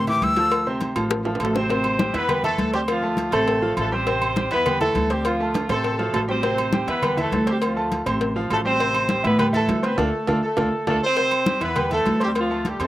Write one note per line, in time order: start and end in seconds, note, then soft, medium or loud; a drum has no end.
0.00 0.19 A2 loud
0.07 0.32 E3 medium
0.07 0.32 E4 medium
0.07 0.32 G4 medium
0.07 0.25 D6 loud
0.07 high conga soft
0.07 low conga medium
0.07 low agogo medium
0.22 0.90 D2 medium
0.22 0.67 E6 loud
0.22 cowbell medium
0.22 high conga medium
0.22 low agogo medium
0.36 0.61 F3 medium
0.36 0.61 F4 medium
0.36 0.61 A4 medium
0.36 cowbell medium
0.36 high conga soft
0.52 cowbell loud
0.52 high conga soft
0.52 low agogo loud
0.67 0.91 C3 medium
0.67 0.91 C4 medium
0.67 0.91 C5 medium
0.67 high conga soft
0.81 cowbell medium
0.81 high conga medium
0.81 low agogo medium
0.96 1.37 A1 loud
0.96 1.20 F3 medium
0.96 1.20 F4 medium
0.96 1.21 A4 medium
0.96 cowbell medium
0.96 high conga soft
0.96 low agogo loud
1.11 cowbell loud
1.11 high bongo medium
1.11 high conga soft
1.25 1.50 F3 medium
1.25 1.50 F4 medium
1.25 1.50 A4 medium
1.25 high conga soft
1.25 high timbale loud
1.35 high timbale medium
1.40 2.09 A1 medium
1.40 1.55 A3 medium
1.40 1.55 A4 medium
1.40 cowbell medium
1.40 high conga soft
1.40 low agogo loud
1.45 low timbale loud
1.55 1.67 C3 medium
1.55 1.67 C4 medium
1.55 2.15 C4 loud
1.55 2.14 C5 loud
1.55 1.68 C5 medium
1.55 low bongo medium
1.55 high conga soft
1.55 low timbale medium
1.69 1.94 C3 medium
1.69 1.94 C4 medium
1.69 1.94 C5 medium
1.69 cowbell loud
1.69 high conga soft
1.69 low agogo medium
1.84 high conga soft
1.84 low agogo loud
1.99 2.11 G3 medium
1.99 2.12 G4 medium
1.99 2.12 G5 medium
1.99 cowbell medium
1.99 high conga loud
2.14 2.55 E2 loud
2.14 2.26 E3 medium
2.14 2.43 B3 medium
2.14 2.26 E4 medium
2.14 2.42 B4 loud
2.14 2.26 E5 medium
2.14 cowbell medium
2.14 low agogo medium
2.28 2.41 G3 medium
2.28 2.41 G4 medium
2.28 2.41 G5 medium
2.28 cowbell loud
2.28 high conga soft
2.28 low conga medium
2.28 low agogo loud
2.44 2.68 E3 medium
2.44 2.72 A3 medium
2.44 2.68 E4 medium
2.44 2.71 A4 loud
2.44 2.68 E5 medium
2.44 high conga soft
2.44 low conga medium
2.44 low agogo medium
2.58 3.27 D2 medium
2.58 cowbell medium
2.58 high conga medium
2.58 low agogo medium
2.73 2.81 G3 medium
2.73 2.98 C4 medium
2.73 2.80 G4 medium
2.73 2.98 C5 medium
2.73 2.98 C6 medium
2.73 cowbell medium
2.73 high conga soft
2.88 3.30 F3 medium
2.88 3.30 F4 medium
2.88 cowbell loud
2.88 high conga soft
2.88 low agogo loud
3.03 3.27 A3 medium
3.03 3.28 A4 medium
3.03 3.28 A5 medium
3.03 high conga soft
3.17 cowbell medium
3.17 high conga medium
3.17 low agogo medium
3.32 3.74 A1 loud
3.32 3.57 C3 medium
3.32 3.74 A3 medium
3.32 3.57 C4 medium
3.32 3.74 A4 loud
3.32 3.57 C5 medium
3.32 cowbell medium
3.32 high conga soft
3.32 low agogo loud
3.47 cowbell loud
3.47 high conga soft
3.62 3.86 F3 medium
3.62 3.87 F4 medium
3.62 3.87 F5 medium
3.62 high conga soft
3.77 4.45 A1 loud
3.77 3.92 A3 medium
3.77 3.91 A4 loud
3.77 cowbell medium
3.77 high conga soft
3.77 low agogo loud
3.92 4.04 G3 medium
3.92 4.52 C4 medium
3.92 4.04 G4 medium
3.92 4.51 C5 loud
3.92 4.04 G5 medium
3.92 high conga soft
4.06 4.31 C3 medium
4.06 4.32 C4 medium
4.06 4.32 C5 medium
4.06 cowbell loud
4.06 high conga soft
4.06 low agogo medium
4.21 high conga soft
4.21 low agogo loud
4.36 4.49 G3 medium
4.36 4.49 G4 medium
4.36 4.49 G5 medium
4.36 cowbell medium
4.36 high conga loud
4.51 4.92 E2 loud
4.51 4.63 E3 medium
4.51 4.79 B3 medium
4.51 4.64 E4 medium
4.51 4.79 B4 loud
4.51 4.64 E5 medium
4.51 cowbell medium
4.51 high conga soft
4.51 low agogo medium
4.66 4.78 G3 medium
4.66 4.78 G4 medium
4.66 4.79 G5 medium
4.66 cowbell loud
4.66 high conga soft
4.66 low conga medium
4.66 low agogo loud
4.81 5.05 E3 medium
4.81 5.09 A3 medium
4.81 5.05 E4 medium
4.81 5.08 A4 loud
4.81 5.06 E5 medium
4.81 high conga soft
4.81 low conga medium
4.81 low agogo medium
4.95 5.64 D2 medium
4.95 cowbell medium
4.95 high conga medium
4.95 low agogo medium
5.10 5.26 G3 medium
5.10 5.35 C4 medium
5.10 5.26 G4 medium
5.10 5.35 C5 medium
5.10 5.35 C6 medium
5.10 cowbell medium
5.10 high conga soft
5.25 5.67 F3 medium
5.25 5.67 F4 loud
5.25 cowbell loud
5.25 high conga soft
5.25 low agogo loud
5.40 5.64 A3 medium
5.40 5.64 A4 medium
5.40 5.65 A5 medium
5.40 high conga soft
5.54 cowbell medium
5.54 high conga medium
5.54 high timbale medium
5.54 low agogo medium
5.69 6.11 A1 loud
5.69 5.94 C3 medium
5.69 6.12 A3 medium
5.69 5.94 C4 medium
5.69 6.11 A4 loud
5.69 5.94 C5 medium
5.69 cowbell medium
5.69 high conga soft
5.69 high timbale medium
5.69 low agogo loud
5.84 cowbell loud
5.84 high conga soft
5.99 6.23 F3 medium
5.99 6.23 F4 medium
5.99 6.23 F5 medium
5.99 high conga soft
5.99 low timbale medium
6.13 6.82 A1 medium
6.13 6.22 A3 medium
6.13 6.21 A4 medium
6.13 cowbell medium
6.13 high conga soft
6.13 low timbale loud
6.13 low agogo loud
6.28 6.40 G3 medium
6.28 6.85 C4 medium
6.28 6.41 G4 medium
6.28 6.84 C5 loud
6.28 6.41 G5 medium
6.28 high conga soft
6.28 low timbale medium
6.43 6.67 C3 medium
6.43 6.68 C4 medium
6.43 6.68 C5 medium
6.43 cowbell loud
6.43 high conga soft
6.43 low agogo medium
6.58 high conga soft
6.58 low agogo loud
6.73 6.85 G3 medium
6.73 6.85 G4 medium
6.73 6.85 G5 medium
6.73 cowbell medium
6.73 high conga loud
6.87 7.29 E2 medium
6.87 7.00 E3 medium
6.87 7.16 B3 medium
6.87 7.00 E4 medium
6.87 7.16 B4 loud
6.87 7.00 E5 medium
6.87 cowbell medium
6.87 high conga soft
6.87 low agogo medium
7.02 7.15 G3 medium
7.02 7.15 G4 medium
7.02 7.15 G5 medium
7.02 cowbell loud
7.02 high conga soft
7.02 low conga medium
7.02 low agogo loud
7.17 7.41 E3 medium
7.17 7.46 A3 medium
7.17 7.42 E4 medium
7.17 7.46 A4 loud
7.17 7.42 E5 medium
7.17 high conga soft
7.17 low conga medium
7.17 low agogo medium
7.32 8.00 D2 medium
7.32 cowbell medium
7.32 high conga medium
7.32 low timbale medium
7.32 low agogo medium
7.47 7.56 G3 medium
7.47 7.71 C4 medium
7.47 7.55 G4 medium
7.47 7.71 C5 medium
7.47 7.71 C6 medium
7.47 cowbell medium
7.47 high conga soft
7.62 8.04 F3 medium
7.62 8.04 F4 medium
7.62 cowbell loud
7.62 high conga soft
7.62 low agogo loud
7.76 8.01 A3 medium
7.76 8.01 A4 medium
7.76 8.01 A5 medium
7.76 high conga soft
7.92 cowbell medium
7.92 high conga medium
7.92 low agogo medium
8.06 8.47 A1 loud
8.06 8.30 C3 medium
8.06 8.30 C4 medium
8.06 8.31 C5 medium
8.06 cowbell medium
8.06 high conga soft
8.06 low agogo loud
8.21 cowbell loud
8.21 high conga soft
8.36 8.60 F3 medium
8.36 8.60 F4 medium
8.36 8.60 F5 medium
8.36 high conga soft
8.50 9.19 A1 medium
8.50 8.58 A3 medium
8.50 8.58 A4 loud
8.50 cowbell medium
8.50 high conga soft
8.50 low timbale medium
8.50 low agogo loud
8.65 8.77 G3 medium
8.65 9.21 C4 loud
8.65 8.77 G4 medium
8.65 9.21 C5 loud
8.65 8.78 G5 medium
8.65 high conga soft
8.80 9.04 C3 medium
8.80 9.04 C4 medium
8.80 9.04 C5 medium
8.80 cowbell loud
8.80 high conga soft
8.80 low agogo medium
8.94 high conga soft
8.94 low agogo loud
9.09 9.21 G3 medium
9.09 9.22 G4 medium
9.09 9.22 G5 medium
9.09 cowbell medium
9.09 high conga loud
9.23 9.66 A2 loud
9.23 9.36 E3 medium
9.23 9.39 B3 medium
9.23 9.36 E4 medium
9.23 9.37 B4 loud
9.23 9.36 E5 medium
9.23 cowbell medium
9.23 high conga soft
9.23 low agogo medium
9.38 9.51 G3 medium
9.38 9.46 B3 medium
9.38 9.51 G4 medium
9.38 9.45 B4 loud
9.38 9.51 G5 medium
9.38 cowbell loud
9.38 high conga soft
9.38 low conga medium
9.38 low agogo loud
9.53 9.78 E3 medium
9.53 9.82 A3 medium
9.53 9.78 E4 medium
9.53 9.81 A4 loud
9.53 9.78 E5 medium
9.53 high conga soft
9.53 low conga medium
9.53 low agogo medium
9.68 9.96 D2 medium
9.68 cowbell medium
9.68 high conga medium
9.68 low timbale medium
9.68 low agogo medium
9.83 9.99 B3 medium
9.83 9.95 C4 medium
9.83 9.98 B4 medium
9.83 9.96 C5 medium
9.83 9.95 C6 medium
9.83 cowbell medium
9.83 high conga soft
9.98 10.09 D2 loud
9.98 10.41 A3 medium
9.98 10.07 D4 loud
9.98 10.07 F4 medium
9.98 10.07 A4 medium
9.98 10.40 A4 medium
9.98 cowbell loud
9.98 low conga medium
9.98 high timbale loud
10.27 10.39 D2 loud
10.27 10.38 D4 medium
10.27 10.38 F4 loud
10.27 10.38 A4 loud
10.27 cowbell medium
10.27 low conga loud
10.27 high timbale loud
10.43 10.88 A3 medium
10.43 10.87 A4 medium
10.57 10.68 D2 loud
10.57 10.67 D4 medium
10.57 10.67 F4 loud
10.57 10.67 A4 medium
10.57 cowbell loud
10.57 low conga loud
10.57 high timbale loud
10.87 10.98 D2 medium
10.87 11.02 A3 medium
10.87 10.97 D4 loud
10.87 10.97 F4 medium
10.87 10.97 A4 medium
10.87 11.01 A4 loud
10.87 cowbell loud
10.87 low conga loud
10.87 high timbale medium
11.04 11.59 C4 medium
11.04 11.58 C5 loud
11.17 11.41 C3 medium
11.17 11.41 C4 medium
11.17 11.41 C5 medium
11.17 cowbell loud
11.17 high conga soft
11.17 low agogo medium
11.31 high conga soft
11.31 low agogo loud
11.46 11.59 G3 medium
11.46 11.59 G4 medium
11.46 11.59 G5 medium
11.46 cowbell medium
11.46 high conga loud
11.61 12.03 E2 loud
11.61 11.73 E3 medium
11.61 11.92 B3 medium
11.61 11.73 E4 medium
11.61 11.92 B4 loud
11.61 11.73 E5 medium
11.61 cowbell medium
11.61 high conga soft
11.61 low agogo medium
11.76 11.88 G3 medium
11.76 11.88 G4 medium
11.76 11.88 G5 medium
11.76 cowbell loud
11.76 high conga soft
11.76 low conga medium
11.76 low agogo loud
11.90 12.15 E3 medium
11.90 12.20 A3 medium
11.90 12.15 E4 medium
11.90 12.19 A4 loud
11.90 12.15 E5 medium
11.90 high conga soft
11.90 low conga medium
11.90 low agogo medium
12.06 12.74 D2 medium
12.06 cowbell medium
12.06 high conga medium
12.06 low timbale medium
12.06 low agogo medium
12.20 12.30 G3 medium
12.20 12.45 C4 medium
12.20 12.29 G4 loud
12.20 12.45 C5 medium
12.20 12.45 C6 medium
12.20 cowbell medium
12.20 high conga soft
12.35 12.65 F3 medium
12.35 12.64 F4 loud
12.35 cowbell loud
12.35 high conga soft
12.35 low agogo loud
12.50 12.75 A3 medium
12.50 12.75 A4 medium
12.50 12.75 A5 medium
12.50 high conga soft
12.65 12.81 G3 medium
12.65 12.81 G4 medium
12.65 cowbell medium
12.65 high conga medium
12.65 low agogo medium
12.80 12.87 F2 loud
12.80 12.87 C3 medium
12.80 12.87 A3 medium
12.80 12.87 C4 medium
12.80 12.87 A4 loud
12.80 12.87 C5 medium
12.80 cowbell medium
12.80 high conga soft
12.80 low agogo loud